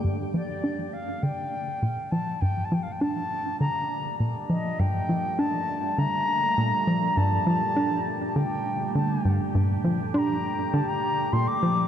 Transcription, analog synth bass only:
\new Staff \with { instrumentName = "Analog synth bass" } { \clef bass \time 4/4 \key g \minor \tempo 4 = 101 g,8 f16 r16 d'8 r8 d8 r8 bes,16 r16 f8 | g,8 f16 r16 d'8 r8 d8 r8 bes,16 r16 f8 | g,8 f16 r16 d'8 r8 d8 r8 bes,16 r16 f8 | g,8 f16 r16 d'8 r8 d8 r8 d8 g,16 r16 |
g,8 f16 r16 d'8 r8 d8 r8 bes,16 r16 f8 | }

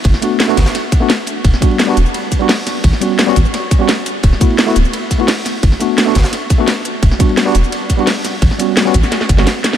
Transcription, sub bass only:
\new Staff \with { instrumentName = "Sub bass" } { \clef bass \time 4/4 \key a \mixolydian \tempo 4 = 172 g,,8 r4 g,,8 r2 | e,,8 r4 e,,8 r2 | a,,8 r4 a,,8 r2 | d,,8 r4 d,,8 r2 |
g,,8 r4 g,,8 r2 | e,,8 r4 e,,8 r2 | a,,8 r4 a,,8 r8 g,,8 r4 | }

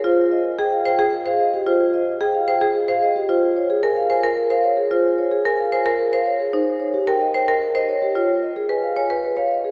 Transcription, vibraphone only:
\new Staff \with { instrumentName = "Vibraphone" } { \time 3/4 \key bes \dorian \tempo 4 = 111 c''16 r16 ees''16 r16 g''16 f''16 g''16 r16 aes'16 f''16 ees''16 g'16 | c''16 r16 ees''16 r16 g''16 f''16 g''16 r16 aes'16 f''16 ees''16 g'16 | c''16 r16 des''16 aes'16 aes''16 f''16 aes''16 r16 bes'16 f''16 des''16 aes'16 | c''16 r16 des''16 aes'16 aes''16 f''16 aes''16 r16 bes'16 f''16 des''16 aes'16 |
c''16 r16 des''16 g'16 g''16 ees''16 g''16 r16 bes'16 ees''16 des''16 g'16 | des''16 r16 ees''16 aes'16 aes''16 f''16 aes''16 r16 ces''16 f''16 ees''16 aes'16 | }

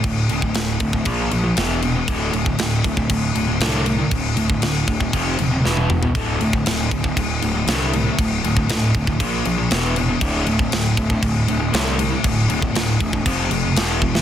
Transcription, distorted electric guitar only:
\new Staff \with { instrumentName = "Distorted electric guitar" } { \clef bass \time 4/4 \key d \minor \tempo 4 = 118 <d, a,>8 <d, a,>16 <d, a,>16 <d, a,>8 <d, a,>16 <d, a,>16 <bes, f bes>8 <bes, f>16 <bes, f>16 <e, b, e>8 <e, b,>16 <e, b,>16 | <d, a, d>8 <d, a,>16 <d, a,>16 <d, a,>8 <d, a,>16 <d, a,>16 <d, a,>8 <d, a,>16 <d, a,>16 <d, a, d>8 <d, a,>16 <d, a,>16 | <d, a,>8 <d, a,>16 <d, a,>16 <d, a,>8 <d, a,>16 <d, a,>16 <f, c f>8 <f, c>16 <f, c>16 <e, b, e>8 <e, b,>16 <e, b,>16 | <d, a, d>8 <d, a,>16 <d, a,>16 <d, a,>8 <d, a,>16 <d, a,>16 <d, a,>8 <d, a,>16 <d, a,>16 <d, a, d>8 <d, a,>16 <d, a,>16 |
<d, a,>8 <d, a,>16 <d, a,>16 <d, a,>8 <d, a,>16 <d, a,>16 <bes, f bes>8 <bes, f>16 <bes, f>16 <e, b, e>8 <e, b,>16 <e, b,>16 | <d, a, d>8 <d, a,>16 <d, a,>16 <d, a,>8 <d, a,>16 <d, a,>16 <d, a,>8 <d, a,>16 <d, a,>16 <d, a, d>8 <d, a,>16 <d, a,>16 | <d, a,>8 <d, a,>16 <d, a,>16 <d, a,>8 <d, a,>16 <d, a,>16 <f, c f>8 <f, c>16 <f, c>16 <e, b, e>8 <e, b,>16 <e, b,>16 | }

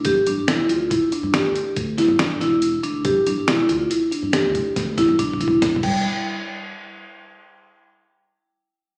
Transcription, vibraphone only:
\new Staff \with { instrumentName = "Vibraphone" } { \time 7/4 \key c \mixolydian \tempo 4 = 140 g'8 d'8 e'8 f'8 e'8 d'8 g'4 r8 e'8 d'8 e'4 d'8 | g'8 d'8 e'8 f'8 e'8 d'8 g'4 r8 e'8 d'8 e'4 g8 | r1. r4 | }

